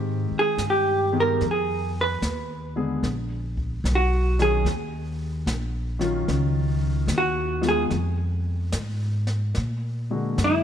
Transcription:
Already playing: G#2 D#3 G#3 C4 G4
0.31 muted upright bass stroke
0.39 G#4
0.58 G2, snare, hi-hat pedal
0.70 G4
1.12 D#3 B3 G4 G#4
1.20 A#4
1.41 F2, brush sweep, snare
1.51 G#4
2.01 B4
2.22 D#2, snare, hi-hat pedal
2.76 D3 G#3 B3 G#4
3.03 A#1, brush sweep, snare
3.57 kick
3.84 B1, snare, hi-hat pedal
3.95 F#4
4.39 D#3 F#3 C#4 G#4, snare
4.64 D#2, brush sweep, snare
5.46 A#1, snare, hi-hat pedal
5.99 D#3 F#3 C#4 F4, snare
6.28 C#2, brush sweep, snare
7.07 D#2, snare, hi-hat pedal
7.18 F#4
7.61 D#3 G#3 B3 F4, snare
7.69 G#4
7.90 F2, brush sweep, snare
8.72 G#2, snare, hi-hat pedal
9.27 snare
9.55 A#2, brush sweep, snare
10.10 D3 G#3 A#3 F#4
10.38 F#2, snare, hi-hat pedal
10.44 E4

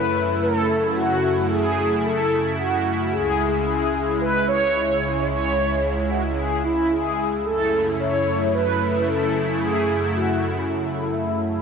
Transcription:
Already playing: F#2 C#3 A3 E4 B4
0.42 A4
0.96 F#4
1.50 G#4
2.04 A4
2.58 F#4
3.12 C#2 G#3 G#4
3.66 G#4
4.21 B4
4.48 C#5
5.29 C#5
6.10 F#4
6.37 G#4
6.64 E4
6.91 G#4
7.45 F#2 C#3 A3 E4 A4
7.99 C#5
8.53 B4
9.07 A4
9.61 G#4
10.15 F#4

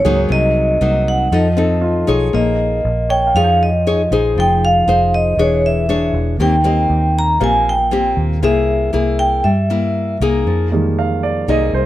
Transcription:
Already playing: G#2 G4 A#4 C#5 C6
0.05 C#2 F#3 A#3 D#4 G#4
0.29 C2 C3 D#5
0.81 C2 F#3 A#3 D#4
1.08 F#5
1.32 F2 F3 C4 D#4 A4 D#5
1.57 C4 D#4 A4
1.81 F4
2.07 B1 D#4 G#4 C#5
2.33 A#1 A#3 D#5
2.85 A#1
3.09 C#5 G5
3.27 F5
3.35 F2 F3 D#4 G#4 C#5 F5
3.44 G5
3.63 D#5
3.87 D#4 G#4 C#5
4.11 A#1 D#4 G#4 C5
4.36 F1 F3 G5
4.65 F5
4.87 F1 D#4 G#4 C5
5.14 D#5
5.37 E1 E3 D4 G#4 C#5
5.66 E5
5.89 D4 G#4 C#5
6.13 E1
6.38 D#2 D#3 A#3 C4 G4 G5
6.64 A#3 C4 G4 D#5
6.90 D#2
7.19 A#5
7.40 A#1 A#2 A#3 C4 G4 F5 G#5
7.69 G5
7.91 A#3 C4 G4
8.17 D#2
8.42 C2 C3 A#3 E4 G#4 E5
8.93 C2 A#3 E4 G#4
9.19 G5
9.44 G2 G3 E5
9.70 A#3 E4
10.20 C2 A#3 D#4 G#4
10.46 F2 F3
10.72 D#3 G3 G#3 A#3
10.99 F5
11.23 D5
11.48 C2 C3 A#3 D#4 G#4 D#5
11.73 C2 C5

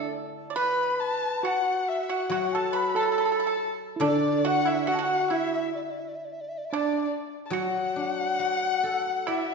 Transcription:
Already playing: D3 F#3 A3 D4 E4 A4 D5
0.50 D5
0.56 B4 B5
0.93 B5
1.00 A5
1.43 F#4 F#5
1.89 E5
2.09 F#4 F#5
2.29 F#3 F#4 F#5
2.53 A4 A5
2.73 B4 B5
2.95 A4 A5
3.03 A4 B5
3.12 A4 A5
3.18 A4 B5
3.25 A4 A5
3.32 A4
3.36 A4 B5
3.45 A4 A5
3.96 D3 E4
4.01 D4 D5
4.07 D5
4.45 F#4 F#5
4.65 E4 E5
4.69 E5
4.87 F#4 F#5
4.95 F#4 A5
5.02 F#5
5.30 E4 E5
5.56 D4
5.75 D5
5.83 E5
5.90 D5
5.99 E5
6.08 D5
6.16 E5
6.25 D5
6.33 E5
6.41 D5
6.49 E5
6.58 D5
6.65 E5
6.72 D4 D5
7.46 A5
7.50 F#3 F#4 F#5
7.96 D4
8.39 F#4
8.83 A4
9.27 E4 D5 E5

